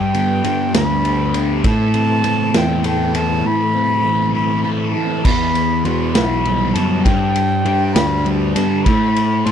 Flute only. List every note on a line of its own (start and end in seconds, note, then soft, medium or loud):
0.00 0.75 G5 loud
0.76 1.39 B5 medium
1.66 2.59 A5 loud
2.57 2.86 G5 medium
2.87 3.18 G5 medium
3.16 3.48 A5 loud
3.46 4.34 B5 loud
4.35 4.63 B5 loud
4.63 4.70 B5 medium
4.92 5.26 A5 loud
5.24 5.86 B5 loud
5.85 6.15 C6 medium
6.13 6.76 B5 loud
6.74 7.05 A5 medium
7.04 7.95 G5 loud
7.93 8.28 B5 loud
8.53 8.85 A5 medium
8.84 9.46 B5 loud
9.44 9.52 C6 medium